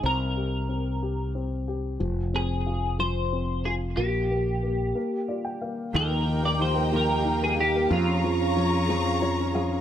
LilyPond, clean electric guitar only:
\new Staff \with { instrumentName = "Clean electric guitar" } { \time 6/8 \key ees \major \tempo 4. = 61 bes'2 r4 | r8 aes'4 c''4 aes'8 | g'2~ g'8 r8 | bes'8. d''16 c''8 bes'8. aes'16 g'8 |
f'2~ f'8 r8 | }